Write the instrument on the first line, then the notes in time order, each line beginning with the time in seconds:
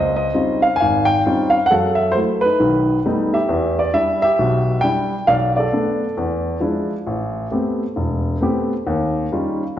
grand piano
Already playing: C#2 C5 D#5
0.16 D#5
0.34 G3 C4 C#4 D#4 F4
0.62 F5
0.76 G#5
0.80 G#1 F5
1.05 G5
1.26 G3 C4 C#4 D#4 F4
1.50 F5
1.66 F#5
1.70 F#2 A4
1.95 E5
2.12 F#3 A3 C5
2.16 E4
2.41 B4
2.45 D#4
2.60 B1 D#3
3.05 G3 A3 B3 D#4
3.34 G4 E5
3.49 E2
3.79 D5
3.93 G3 D4 E4 E5
4.22 G4 E5
4.39 B1 B2
4.81 G3 D4 E4 G5
5.27 B1 D5 F5
5.57 A4 D5
5.73 A3 B3 D4
6.17 E2
6.60 F3 G#3 D4 E4
7.07 A1
7.51 A3 B3 C4 G4
7.96 E1
8.41 A3 B3 C4 G4
8.87 D#2
9.32 G3 C#4 D#4 F4